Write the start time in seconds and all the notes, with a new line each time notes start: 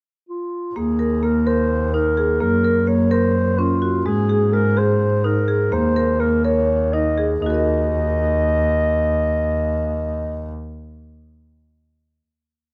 0.29 F4
0.75 D#2 A#3 G#4
0.99 A#4
1.23 A#3 A#4
1.47 A#4 C5
1.94 D#4 A#4
2.17 G#4
2.40 F#2 A#3 A#4
2.64 A#4
2.87 A#3 C#5
3.11 A#4 C5
3.59 C#4 F4
3.82 F#4
4.06 G#2 G#3 G#4
4.29 G#4
4.53 G#3 A#4
4.77 G#4 C5
5.24 D#4 A#4
5.48 G#4
5.72 D#2 A#3 C5
5.96 A#4
6.20 A#3 A#4
6.44 A#4 C#5
6.93 D#4 D#5
7.18 G#4
7.42 D#2 D#4 D#5
7.46 F#4 A#4
7.54 D#5